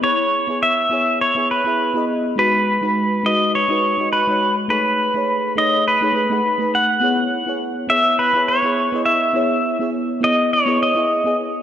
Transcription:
X:1
M:4/4
L:1/16
Q:"Swing 16ths" 1/4=103
K:C#m
V:1 name="Pedal steel guitar"
c4 e4 c2 B4 z2 | B6 d2 c4 B3 z | B6 d2 B6 f2- | f4 z2 e2 B2 c4 e2- |
e4 z2 d2 c2 d4 z2 |]
V:2 name="FM electric piano"
[B,EGc]3 [B,EGc]3 [B,EGc]3 [B,EGc]2 [B,EGe]2 [B,EGd]3 | [G,DFB]3 [G,DFB]3 [G,DFB]3 [G,DFB]2 [G,DFd]2 [G,DFc]3 | [A,DGc]3 [A,DGc]3 [A,DGc]3 [A,DGc] [A,DGB] [A,DGf] z [A,DGB]3 | [B,EGc]3 [B,EGc]3 [B,EGc]3 [B,EGc]2 [B,EGe]2 [B,EGd]3 |
[B,EGc]3 [B,EGc]3 [B,EGc]3 [B,EGc]2 [B,EGe]2 [B,EGd]3 |]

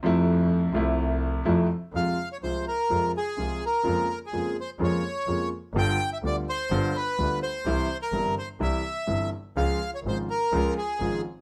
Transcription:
X:1
M:4/4
L:1/16
Q:1/4=126
K:F
V:1 name="Bandoneon"
z16 | [K:Fm] f3 d c2 B4 A4 B2- | B3 A3 c2 d6 z2 | g3 =e =d2 c4 =B4 c2- |
c3 B3 c2 =e6 z2 | f3 d c2 B4 A4 z2 |]
V:2 name="Grand piano" clef=bass
[F,,C,F,A,E]6 [C,,C,F,A,E]6 [F,,C,F,A,E]2 z2 | [K:Fm] [F,,C,F,A,F]2 z2 [C,,C,F,A,F]2 z2 [F,,C,F,A,F]2 z2 [C,,C,F,A,F]2 z2 | [F,,D,F,A,B,F]2 z2 [F,,D,F,A,B,F]2 z2 [F,,D,F,A,B,F]2 z2 [F,,D,F,A,B,F]2 z2 | [G,,,G,,=D,G,=B,F]2 z2 [=D,,D,G,B,F]2 z2 [G,,,G,,D,G,B,F]2 z2 [D,,D,G,B,F]2 z2 |
[C,,C,=E,G,=E]2 z2 [G,,,G,,C,E,G,E]2 z2 [C,,C,E,G,E]2 z2 [G,,,G,,C,E,G,E]2 z2 | [D,,D,F,A,F]2 z2 [A,,,A,,D,F,A,F]2 z2 [D,,D,F,A,F]2 z2 [A,,,A,,D,F,A,F]2 z2 |]
V:3 name="Double bass" clef=bass
F,,6 C,,6 F,,2 z2 | [K:Fm] F,,2 z2 C,,2 z2 F,,2 z2 C,,2 z2 | F,,2 z2 F,,2 z2 F,,2 z2 F,,2 z2 | G,,,2 z2 =D,,2 z2 G,,,2 z2 D,,2 z2 |
C,,2 z2 G,,,2 z2 C,,2 z2 G,,,2 z2 | D,,2 z2 A,,,2 z2 D,,2 z2 A,,,2 z2 |]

